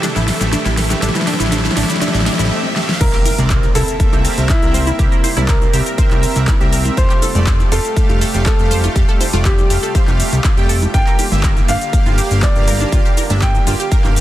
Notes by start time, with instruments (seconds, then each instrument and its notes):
Already playing: analog synth pad C3 E3 A3 E4 A4, riser
0.03 supersaw synth A3 G4 E5, synth pluck D4, snare, closed hi-hat, shaker
0.16 analog synth bass A1, synth pluck E4, snare, closed hi-hat, shaker
0.28 snare, closed hi-hat, open hi-hat
0.41 analog synth bass A1, supersaw synth A3 G4 E5, snare, closed hi-hat, shaker
0.53 supersaw synth A3 G4 E5, synth pluck D4, snare, closed hi-hat, shaker
0.66 analog synth bass A1, synth pluck E4, snare, closed hi-hat, shaker
0.77 snare, closed hi-hat, open hi-hat
0.90 supersaw synth A3 G4 E5, snare, closed hi-hat, shaker
1.02 analog synth bass A1, supersaw synth A3 G4 E5, synth pluck D4, snare, closed hi-hat, shaker
1.09 snare
1.15 synth pluck E4, snare, closed hi-hat, shaker
1.21 snare
1.27 supersaw synth A3 G4 E5, synth pluck D4, snare, closed hi-hat, open hi-hat
1.34 snare
1.40 analog synth bass A1, synth pluck E4, snare, closed hi-hat, shaker
1.46 snare
1.52 supersaw synth A3 G4 E5, synth pluck D4, snare, closed hi-hat, shaker
1.58 snare
1.65 synth pluck E4, snare, shaker
1.71 snare
1.77 analog synth bass A1, supersaw synth A3 G4 E5, synth pluck D4, snare, closed hi-hat, open hi-hat
1.83 snare, closed hi-hat
1.90 synth pluck E4, snare, closed hi-hat, shaker
1.96 snare, closed hi-hat
2.01 supersaw synth A3 G4 E5, synth pluck D4, snare, closed hi-hat, swell, shaker
2.08 snare
2.14 analog synth bass A1, synth pluck E4, snare, closed hi-hat, shaker
2.20 snare
2.26 supersaw synth A3 G4 E5, synth pluck D4, snare, closed hi-hat, open hi-hat
2.33 snare
2.39 analog synth bass A1, synth pluck E4, snare, closed hi-hat, shaker
2.45 snare
2.51 supersaw synth A3 G4 E5
2.76 supersaw synth A3 G4 E5, snare
2.89 snare
3.01 analog synth bass C2, analog synth pad C3 G3 A#3 E4 G4, supersaw synth C4 A#4 E5, synth pluck E4, grand piano A#4, kick, closed hi-hat, crash, impact, shaker
3.13 synth pluck G4, clap, closed hi-hat, shaker
3.25 synth pluck A#4, closed hi-hat, open hi-hat, high conga, shaker
3.38 analog synth bass C2, supersaw synth C4 A#4 D5, closed hi-hat, low conga, shaker
3.50 synth pluck C5, kick, snare, clap, closed hi-hat, shaker
3.63 snare, closed hi-hat, high conga, shaker
3.75 analog synth bass C2, supersaw synth C4 A#4 E5, synth pluck E4, grand piano A4, closed hi-hat, open hi-hat, shaker
3.88 closed hi-hat, shaker
4.00 supersaw synth A#3 C4 E5, kick, closed hi-hat, shaker
4.13 analog synth bass C2, synth pluck G4, closed hi-hat, high conga, shaker
4.25 synth pluck A#4, open hi-hat, shaker
4.38 analog synth bass C2, supersaw synth C4 A#4 E5, snare, closed hi-hat, shaker
4.49 grand piano E4, kick, snare, clap, closed hi-hat, high conga, shaker
4.62 analog synth bass C2, supersaw synth C4 A#4 E5, closed hi-hat, shaker
4.74 synth pluck C5, closed hi-hat, open hi-hat, low conga, shaker
4.87 synth pluck E4, closed hi-hat, high conga, shaker
4.99 analog synth bass C2, supersaw synth C4 A#4 E5, synth pluck G4, kick, closed hi-hat, shaker
5.12 synth pluck A#4, closed hi-hat, shaker
5.24 synth pluck C5, closed hi-hat, open hi-hat, high conga, shaker
5.37 analog synth bass C2, supersaw synth C4 A#4 D5, synth pluck E4, closed hi-hat, low conga, shaker
5.48 grand piano A#4, kick, snare, clap, closed hi-hat, shaker
5.62 closed hi-hat, high conga, shaker
5.73 analog synth bass C2, supersaw synth C4 A#4 E5, synth pluck G4, closed hi-hat, open hi-hat, shaker
5.86 synth pluck A#4, closed hi-hat, shaker
5.98 supersaw synth C4 A#4 E5, synth pluck C5, kick, closed hi-hat, shaker
6.11 analog synth bass C2, clap, closed hi-hat, high conga, shaker
6.23 closed hi-hat, open hi-hat, shaker
6.36 analog synth bass C2, supersaw synth C4 A#4 E5, snare, closed hi-hat, shaker
6.47 synth pluck E4, kick, snare, clap, closed hi-hat, high conga, shaker
6.61 analog synth bass C2, supersaw synth C4 A#4 E5, synth pluck G4, closed hi-hat, shaker
6.73 synth pluck A#4, snare, closed hi-hat, open hi-hat, shaker
6.85 closed hi-hat, high conga, low conga, shaker
6.97 analog synth bass F1, analog synth pad A3 F4, synth pluck F4, grand piano C5, supersaw synth F5, kick, closed hi-hat, shaker
7.10 synth pluck G4, clap, closed hi-hat, shaker
7.22 synth pluck A4, closed hi-hat, open hi-hat, high conga, shaker
7.35 analog synth bass F1, supersaw synth A3 G4 D5, closed hi-hat, low conga, shaker
7.47 synth pluck C5, kick, snare, clap, closed hi-hat, shaker
7.60 snare, closed hi-hat, high conga, shaker
7.72 analog synth bass F1, supersaw synth A3 G4 F5, synth pluck F4, grand piano A4, closed hi-hat, open hi-hat, shaker
7.85 closed hi-hat, shaker
7.97 supersaw synth A3 G4 F5, kick, closed hi-hat, shaker
8.09 analog synth bass F1, synth pluck G4, closed hi-hat, high conga, shaker
8.21 synth pluck A4, open hi-hat, shaker
8.34 analog synth bass F1, supersaw synth A3 G4 F5, snare, closed hi-hat, shaker
8.46 grand piano A4, kick, snare, clap, closed hi-hat, high conga, shaker
8.59 analog synth bass F1, supersaw synth A3 G4 F5, closed hi-hat, shaker
8.71 synth pluck C5, closed hi-hat, open hi-hat, low conga, shaker
8.84 synth pluck F4, closed hi-hat, high conga, shaker
8.96 analog synth bass F1, supersaw synth A3 G4 F5, synth pluck G4, kick, closed hi-hat, shaker
9.09 synth pluck A4, closed hi-hat, shaker
9.21 synth pluck C5, closed hi-hat, open hi-hat, high conga, shaker
9.33 analog synth bass F1, supersaw synth A3 G4 D5, synth pluck F4, closed hi-hat, low conga, shaker
9.45 grand piano G4, kick, snare, clap, closed hi-hat, shaker
9.58 closed hi-hat, high conga, shaker
9.70 analog synth bass F1, supersaw synth A3 G4 F5, synth pluck G4, closed hi-hat, open hi-hat, shaker
9.83 synth pluck A4, closed hi-hat, shaker
9.95 supersaw synth A3 G4 F5, synth pluck C5, kick, closed hi-hat, shaker
10.08 analog synth bass F1, clap, closed hi-hat, high conga, shaker
10.20 closed hi-hat, open hi-hat, shaker
10.33 analog synth bass C2, snare, closed hi-hat, shaker
10.44 synth pluck F4, kick, snare, clap, closed hi-hat, high conga, shaker
10.57 analog synth bass F1, supersaw synth A3 G4 G5, synth pluck G4, closed hi-hat, shaker
10.69 synth pluck A4, snare, closed hi-hat, open hi-hat, shaker
10.82 closed hi-hat, high conga, low conga, shaker
10.94 analog synth bass G1, analog synth pad D3 A#3, supersaw synth A#3 G4 F5, synth pluck D4, grand piano G5, kick, closed hi-hat, shaker
11.07 synth pluck A#4, clap, closed hi-hat, shaker
11.19 synth pluck G4, closed hi-hat, open hi-hat, high conga, shaker
11.32 analog synth bass G1, supersaw synth A#3 G4 E5, closed hi-hat, low conga, shaker
11.43 synth pluck A#4, kick, snare, clap, closed hi-hat, shaker
11.57 snare, closed hi-hat, high conga, shaker
11.68 analog synth bass G1, supersaw synth A#3 G4 F5, synth pluck D4, grand piano F5, closed hi-hat, open hi-hat, shaker
11.81 closed hi-hat, shaker
11.93 supersaw synth A#3 G4 F5, kick, closed hi-hat, shaker
12.06 analog synth bass G1, synth pluck F4, closed hi-hat, high conga, shaker
12.18 synth pluck G4, open hi-hat, shaker
12.31 analog synth bass G1, supersaw synth A#3 G4 F5, snare, closed hi-hat, shaker
12.42 grand piano D5, kick, snare, clap, closed hi-hat, high conga, shaker
12.56 analog synth bass G1, supersaw synth A#3 G4 F5, closed hi-hat, shaker
12.68 synth pluck A#4, closed hi-hat, open hi-hat, low conga, shaker
12.80 synth pluck D4, closed hi-hat, high conga, shaker
12.92 analog synth bass G1, supersaw synth A#3 G4 F5, synth pluck F4, kick, closed hi-hat, shaker
13.05 synth pluck G4, closed hi-hat, shaker
13.17 synth pluck A#4, closed hi-hat, open hi-hat, high conga, shaker
13.30 analog synth bass G1, supersaw synth A#3 G4 E5, synth pluck D4, closed hi-hat, low conga, shaker
13.42 grand piano G5, kick, snare, clap, closed hi-hat, shaker
13.55 closed hi-hat, high conga, shaker
13.67 analog synth bass G1, supersaw synth A#3 G4 F5, synth pluck F4, closed hi-hat, open hi-hat, shaker
13.80 synth pluck G4, closed hi-hat, shaker
13.92 supersaw synth A#3 G4 F5, synth pluck A#4, kick, closed hi-hat, shaker
14.04 analog synth bass G1, clap, closed hi-hat, high conga, shaker
14.16 closed hi-hat, open hi-hat, shaker